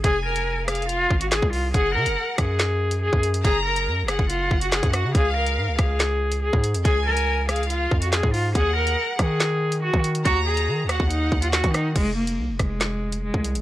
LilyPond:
<<
  \new Staff \with { instrumentName = "Violin section" } { \time 4/4 \key f \phrygian \tempo 4 = 141 aes''4. f''4. r4 | ges''2 r2 | bes''4. ges''2~ ges''8 | f''2 r2 |
aes''4. f''4. r4 | ges''2 r2 | bes''4. ges''2~ ges''8 | r1 | }
  \new Staff \with { instrumentName = "Cello" } { \time 4/4 \key f \phrygian aes'8 bes'4 aes'8 f'8. ges'16 aes'8 f'8 | aes'8 bes'4 aes'4. aes'8 r8 | aes'8 bes'4 aes'8 f'8. ges'16 aes'8 ges'8 | aes'8 bes'4 aes'4. aes'8 r8 |
aes'8 bes'4 aes'8 f'8. ges'16 aes'8 f'8 | aes'8 bes'4 aes'4. ges'8 r8 | ges'8 aes'4 ges'8 ees'8. f'16 ges'8 ees'8 | aes8 bes4 aes4. aes8 r8 | }
  \new Staff \with { instrumentName = "808-style bass" } { \clef bass \time 4/4 \key f \phrygian f,,2~ f,,8 aes,,8. c,8. | ges,,8 des16 ges,,16 r8 ges,4.~ ges,16 ges,8. | ges,,4 ges,16. ges,,16. ges,,8. ges,,8. ges,8 des16 | des,4 aes,16 des,16 des,4.~ des,16 aes,8 f,16 |
des,2~ des,8 f,8. aes,8. | ees,4 r8 ees4.~ ees16 ees8. | ees,4 ees16. ees,16. ees,8. ees,8. ees8. | f,,4 c,16 f,,16 f,,4.~ f,,16 c,8 aes,,16 | }
  \new DrumStaff \with { instrumentName = "Drums" } \drummode { \time 4/4 <hh bd>8. hh16 \tuplet 3/2 { r16 r16 r16 <hh ss>16 hh16 hh16 } hh8 bd16 hh16 <hc hh sn>16 bd16 hho8 | <hh bd>8. hh16 r8 <hh bd ss>8 <hc hh sn>8. hh16 r16 bd16 hh16 hh16 | <hh bd>8. hh16 r8 <hh ss>16 bd16 hh8 bd16 hh16 <hc hh sn>16 <hh bd>16 <hh ss>8 | <hh bd>8. hh16 r8 <hh bd ss>8 <hc hh sn>8. hh16 r16 bd16 hh16 hh16 |
<hh bd>8. hh16 \tuplet 3/2 { r16 r16 r16 <hh ss>16 hh16 hh16 } hh8 bd16 hh16 <hc hh sn>16 bd16 hho8 | <hh bd>8. hh16 r8 <hh bd ss>8 <hc hh sn>8. hh16 r16 bd16 hh16 hh16 | <hh bd>8. hh16 r8 <hh ss>16 bd16 hh8 bd16 hh16 <hc hh sn>16 <hh bd>16 <hh ss>8 | <cymc hh bd>8. hh16 r8 <hh bd ss>8 <hc hh sn>8. hh16 r16 bd16 hh16 hh16 | }
>>